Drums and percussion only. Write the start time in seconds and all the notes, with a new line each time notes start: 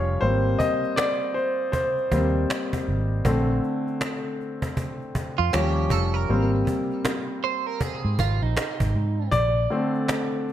0.22 cajon slap
0.60 cajon bass
0.84 cajon slap
0.97 cajon slap
1.37 cajon slap
1.73 cajon bass
1.98 cajon slap
2.12 cajon bass
2.35 cajon slap
2.50 cajon slap
2.73 cajon bass
2.88 cajon slap
3.25 cajon bass
3.64 cajon slap
3.87 cajon slap
4.01 cajon slap
4.41 cajon slap
4.62 cajon bass
4.77 cajon bass
5.01 cajon slap
5.15 cajon bass
5.38 cajon slap
5.53 cajon slap
5.90 cajon bass
6.29 cajon slap
6.67 cajon bass
6.91 cajon slap
7.05 cajon slap
7.44 cajon slap
7.81 cajon bass
8.19 cajon bass
8.42 cajon slap
8.57 cajon slap
8.80 cajon bass
9.32 cajon bass
9.71 cajon slap
9.94 cajon slap
10.08 cajon slap
10.48 cajon slap